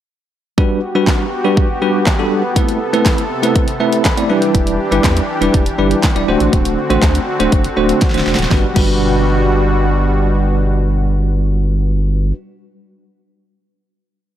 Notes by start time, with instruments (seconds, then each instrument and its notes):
0.58 tine electric piano G3 D4 F#4 B4, supersaw synth B3 F#4 G4, kick
0.95 tine electric piano G3 D4 F#4 B4
1.07 kick, snare, clap
1.44 tine electric piano G3 D4 F#4 B4
1.57 kick
1.82 tine electric piano G3 D4 F#4 B4
2.06 kick, snare, clap
2.19 tine electric piano G3 D4 F#4 A4
2.56 supersaw synth C3 A4, tine electric piano A3 C4 E4 B4, kick, closed hi-hat
2.69 closed hi-hat
2.93 tine electric piano A3 C4 E4 B4, closed hi-hat
3.06 kick, snare, clap, closed hi-hat
3.18 closed hi-hat
3.43 tine electric piano A3 C4 E4 B4, closed hi-hat
3.56 kick, closed hi-hat
3.68 closed hi-hat
3.80 tine electric piano A3 C4 E4 B4 E5
3.93 closed hi-hat
4.05 tine electric piano B5, kick, snare, clap, closed hi-hat
4.17 tine electric piano A3 C4 E4 D5, closed hi-hat
4.29 supersaw synth E3 D4 G4, tine electric piano G3 D4 E4 B4
4.42 closed hi-hat
4.55 sub bass E1, kick, closed hi-hat
4.67 closed hi-hat
4.91 sub bass G1, tine electric piano G3 D4 E4 B4, closed hi-hat
5.04 sub bass E2, kick, snare, clap, closed hi-hat
5.17 closed hi-hat
5.41 sub bass E1, tine electric piano G3 D4 E4 B4, closed hi-hat
5.54 sub bass E1, kick, closed hi-hat
5.66 closed hi-hat
5.78 sub bass G1, tine electric piano G3 D4 E4 B4
5.91 closed hi-hat
6.03 kick, snare, clap, closed hi-hat
6.15 sub bass E1, tine electric piano G3 D4 E4 D5, closed hi-hat
6.28 sub bass D1, supersaw synth D3 C4 F#4, tine electric piano A3 D4 F#4 C5
6.40 sub bass A1, closed hi-hat
6.53 sub bass D1, kick, closed hi-hat
6.65 closed hi-hat
6.90 sub bass A1, tine electric piano A3 D4 F#4 C5, closed hi-hat
7.02 sub bass D2, kick, snare, clap, closed hi-hat
7.15 closed hi-hat
7.40 sub bass D1, tine electric piano A3 D4 F#4 C5, closed hi-hat
7.52 sub bass F#1, kick, closed hi-hat
7.64 closed hi-hat
7.77 sub bass D1, tine electric piano A3 D4 F#4 C5
7.89 closed hi-hat
8.01 kick, snare, closed hi-hat
8.10 tine electric piano A3, snare
8.14 sub bass D1, tine electric piano D4 F#4 C5, closed hi-hat
8.18 snare
8.26 sub bass E1, snare
8.35 snare, closed hi-hat
8.39 sub bass D1
8.43 snare
8.49 sub bass G1, supersaw synth B2 G3 F#4, tine electric piano G3 D4 F#4 B4, kick, snare
8.74 sub bass G1, tine electric piano G3 D4 F#4 B4, kick, crash